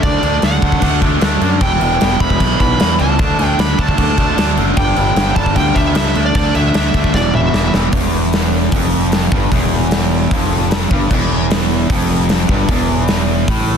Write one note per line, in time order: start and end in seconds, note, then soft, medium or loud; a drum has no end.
0.03 0.21 D2 loud
0.03 0.22 D3 medium
0.03 0.23 A3 loud
0.03 0.23 D4 loud
0.03 0.44 D5 medium
0.03 kick loud
0.03 crash medium
0.22 0.41 D2 medium
0.22 0.42 D3 medium
0.22 0.42 A3 medium
0.22 0.43 D4 loud
0.22 crash medium
0.42 0.61 D2 medium
0.42 0.61 D3 medium
0.42 0.62 A3 loud
0.42 0.62 D4 loud
0.42 0.99 F#5 medium
0.42 snare loud
0.42 crash medium
0.62 0.80 D2 medium
0.62 0.82 D3 medium
0.62 0.82 A3 medium
0.62 0.83 D4 loud
0.62 kick medium
0.62 crash medium
0.72 kick medium
0.82 1.18 D2 loud
0.82 1.02 D3 loud
0.82 1.02 A3 loud
0.82 1.03 D4 loud
0.82 kick loud
0.82 crash medium
1.02 1.20 D3 medium
1.02 1.21 A3 medium
1.02 1.22 D4 medium
1.02 kick medium
1.02 crash medium
1.21 1.40 D2 medium
1.21 1.41 D3 medium
1.21 1.42 A3 loud
1.21 1.42 D4 loud
1.21 snare loud
1.21 crash medium
1.41 1.59 F#2 loud
1.41 1.61 D3 medium
1.41 1.61 A3 medium
1.41 1.61 D4 loud
1.41 crash medium
1.61 1.79 E1 loud
1.61 1.80 E2 loud
1.61 1.80 B2 loud
1.61 1.81 E3 loud
1.61 2.23 G5 loud
1.61 kick loud
1.61 crash medium
1.81 1.99 E1 medium
1.81 1.99 E2 medium
1.81 2.00 B2 medium
1.81 2.00 E3 loud
1.81 crash medium
2.00 2.19 E1 medium
2.00 2.19 E2 loud
2.00 2.19 B2 medium
2.00 2.20 E3 loud
2.00 snare loud
2.00 crash medium
2.20 2.38 E1 medium
2.20 2.39 E2 medium
2.20 2.39 B2 medium
2.20 2.40 E3 loud
2.20 2.59 B5 loud
2.20 kick medium
2.20 crash medium
2.30 kick medium
2.40 2.58 B1 loud
2.40 2.58 E2 loud
2.40 2.59 B2 loud
2.40 2.60 E3 loud
2.40 kick loud
2.40 crash medium
2.60 2.78 B1 medium
2.60 2.79 E2 medium
2.60 2.79 B2 medium
2.60 2.80 E3 medium
2.60 3.01 B5 loud
2.60 kick medium
2.60 crash medium
2.80 2.99 E2 medium
2.80 2.98 E2 medium
2.80 2.99 B2 medium
2.80 3.00 E3 loud
2.80 snare loud
2.80 crash medium
2.99 3.18 C#2 loud
2.99 3.18 E2 medium
2.99 3.18 B2 medium
2.99 3.19 E3 loud
2.99 3.46 A5 loud
2.99 crash medium
3.19 3.37 D2 loud
3.19 3.38 D3 loud
3.19 3.39 A3 loud
3.19 3.40 D4 loud
3.19 kick loud
3.19 crash medium
3.39 3.57 D2 medium
3.39 3.57 D3 medium
3.39 3.58 A3 loud
3.39 3.60 D4 medium
3.39 crash medium
3.46 3.60 G5 loud
3.58 3.76 D2 medium
3.58 3.78 D3 medium
3.58 3.78 A3 loud
3.58 3.80 D4 loud
3.58 3.79 B5 loud
3.58 snare loud
3.58 crash medium
3.79 3.96 D2 loud
3.79 3.96 D3 medium
3.79 3.97 A3 medium
3.79 3.98 D4 loud
3.79 4.54 A5 loud
3.79 kick medium
3.79 crash medium
3.88 kick medium
3.98 4.34 D2 loud
3.98 4.16 D3 loud
3.98 4.17 A3 loud
3.98 4.18 D4 loud
3.98 kick loud
3.98 crash medium
4.18 4.36 D3 medium
4.18 4.37 A3 medium
4.18 4.38 D4 loud
4.18 kick medium
4.18 crash medium
4.37 4.55 D2 loud
4.37 4.56 D3 medium
4.37 4.57 A3 loud
4.37 4.58 D4 loud
4.37 snare loud
4.37 crash medium
4.57 4.75 F#1 medium
4.57 4.76 D3 medium
4.57 4.76 A3 medium
4.57 6.16 D4 loud
4.57 crash medium
4.77 4.95 G1 loud
4.77 4.96 G2 loud
4.77 4.96 D3 loud
4.77 4.97 G3 loud
4.77 5.35 G5 loud
4.77 kick loud
4.77 crash medium
4.96 5.15 G1 medium
4.96 5.15 G2 medium
4.96 5.16 D3 loud
4.96 5.17 G3 loud
4.96 crash medium
5.16 5.34 G1 medium
5.16 5.36 G2 loud
5.16 5.36 D3 medium
5.16 5.37 G3 loud
5.16 snare loud
5.16 crash medium
5.36 5.54 G1 loud
5.36 5.55 G2 medium
5.36 5.55 D3 loud
5.36 5.56 G3 medium
5.36 5.55 A5 loud
5.36 kick medium
5.36 crash medium
5.46 kick medium
5.56 5.74 D2 loud
5.56 5.74 G2 loud
5.56 5.75 D3 loud
5.56 5.76 G3 loud
5.56 5.76 G5 loud
5.56 kick loud
5.56 crash medium
5.75 5.94 D2 medium
5.75 5.94 G2 medium
5.75 5.95 D3 medium
5.75 5.95 G3 medium
5.75 6.21 E5 loud
5.75 kick medium
5.75 crash medium
5.95 6.14 C#2 medium
5.95 6.14 G2 loud
5.95 6.14 D3 loud
5.95 6.15 G3 loud
5.95 snare loud
5.95 crash medium
6.15 6.33 D2 loud
6.15 6.34 D3 loud
6.15 6.34 A3 loud
6.15 6.35 D4 loud
6.15 crash medium
6.26 6.35 D5 medium
6.35 6.53 D2 medium
6.35 6.54 D3 loud
6.35 6.55 A3 loud
6.35 6.56 D4 loud
6.35 6.55 D5 medium
6.35 kick loud
6.35 crash medium
6.55 6.73 D2 medium
6.55 6.73 D3 loud
6.55 6.74 A3 loud
6.55 6.75 D4 loud
6.55 7.11 E5 loud
6.55 crash medium
6.74 6.93 D2 medium
6.74 6.94 D3 medium
6.74 6.95 A3 medium
6.74 6.95 D4 medium
6.74 snare loud
6.74 crash medium
6.94 7.12 D2 medium
6.94 7.13 D3 medium
6.94 7.14 A3 medium
6.94 7.14 D4 medium
6.94 kick medium
6.94 crash medium
7.04 kick medium
7.14 7.50 E1 loud
7.14 7.34 E2 loud
7.14 7.34 B2 loud
7.14 7.35 E3 loud
7.14 7.33 D5 medium
7.14 kick loud
7.14 snare medium
7.34 7.53 E2 medium
7.34 7.54 B2 medium
7.34 7.54 E3 medium
7.34 7.71 E5 medium
7.34 mid tom medium
7.54 7.72 E1 medium
7.54 7.73 E2 medium
7.54 7.74 B2 loud
7.54 7.74 E3 loud
7.54 snare loud
7.74 7.92 E1 loud
7.74 7.92 E2 medium
7.74 7.93 B2 medium
7.74 7.93 E3 medium
7.74 snare medium
7.92 8.69 E1 medium
7.92 8.72 E2 loud
7.92 kick loud
7.92 open hi-hat medium
8.33 snare loud
8.33 open hi-hat medium
8.72 9.28 F1 medium
8.72 9.32 F2 loud
8.72 kick loud
8.72 open hi-hat medium
9.12 snare loud
9.12 open hi-hat medium
9.32 9.51 G1 loud
9.32 9.51 G2 loud
9.32 kick loud
9.52 10.27 E1 medium
9.52 10.31 E2 loud
9.52 kick loud
9.52 open hi-hat medium
9.91 snare loud
9.91 open hi-hat medium
10.31 10.87 F1 medium
10.31 10.90 F2 loud
10.31 kick loud
10.31 open hi-hat medium
10.71 snare loud
10.71 open hi-hat medium
10.91 11.09 G1 loud
10.91 11.10 G2 loud
10.91 kick loud
11.11 11.86 E1 medium
11.11 11.89 E2 loud
11.11 kick loud
11.11 crash loud
11.51 snare loud
11.51 open hi-hat medium
11.90 12.45 F1 loud
11.90 12.49 F2 loud
11.90 kick loud
11.90 open hi-hat medium
12.29 snare loud
12.29 open hi-hat medium
12.49 12.68 G1 loud
12.49 12.69 G2 loud
12.49 kick loud
12.69 13.44 E1 medium
12.69 13.48 E2 loud
12.69 kick loud
12.69 open hi-hat medium
13.08 snare loud
13.08 open hi-hat medium
13.48 13.77 A1 loud
13.48 13.77 A2 loud
13.48 kick loud
13.48 open hi-hat medium